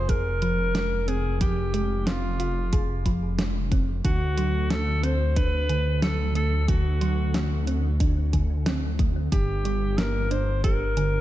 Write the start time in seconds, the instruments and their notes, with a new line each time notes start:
Already playing: detuned saw bass F1, alto saxophone C5
0.09 synth arpeggio sound G#4, alto saxophone A#4, kick, closed hi-hat
0.42 synth arpeggio sound F3, closed hi-hat
0.75 synth arpeggio sound G#3, snare, closed hi-hat
1.08 synth arpeggio sound C4, alto saxophone G#4, closed hi-hat
1.41 synth arpeggio sound F3, alto saxophone G4, kick, closed hi-hat
1.74 synth arpeggio sound G#3, closed hi-hat
2.07 synth arpeggio sound C4, alto saxophone F4, snare, closed hi-hat
2.40 synth arpeggio sound F4, closed hi-hat
2.73 synth arpeggio sound G#4, kick, closed hi-hat
3.06 synth arpeggio sound F3, kick, closed hi-hat
3.39 synth arpeggio sound G#3, snare, closed hi-hat
3.72 synth arpeggio sound C4, kick, closed hi-hat
4.05 detuned saw bass D2, synth arpeggio sound D3, alto saxophone F#4, kick, closed hi-hat
4.38 synth arpeggio sound F#3, closed hi-hat
4.70 synth arpeggio sound A3, alto saxophone A4, snare, closed hi-hat
5.03 synth arpeggio sound C4, alto saxophone C5, closed hi-hat
5.36 synth arpeggio sound D4, alto saxophone B4, kick, closed hi-hat
5.69 synth arpeggio sound D3, closed hi-hat
6.02 synth arpeggio sound F#3, alto saxophone A4, snare, closed hi-hat
6.35 synth arpeggio sound A3, alto saxophone A4, closed hi-hat
6.68 synth arpeggio sound D3, alto saxophone F#4, kick, closed hi-hat
7.01 synth arpeggio sound F#3, closed hi-hat
7.34 synth arpeggio sound A3, snare, closed hi-hat
7.67 synth arpeggio sound C4, closed hi-hat
8.00 synth arpeggio sound D4, kick, closed hi-hat
8.33 synth arpeggio sound D3, kick, closed hi-hat
8.66 synth arpeggio sound C4, snare, closed hi-hat
8.99 synth arpeggio sound A3, kick, closed hi-hat
9.32 detuned saw bass G1, synth arpeggio sound D3, alto saxophone G4, kick, closed hi-hat
9.65 synth arpeggio sound G3, closed hi-hat
9.98 synth arpeggio sound A#3, alto saxophone A#4, snare, closed hi-hat
10.31 synth arpeggio sound D4, alto saxophone C5, closed hi-hat
10.64 synth arpeggio sound G4, alto saxophone A#4, kick, closed hi-hat
10.97 synth arpeggio sound D3, closed hi-hat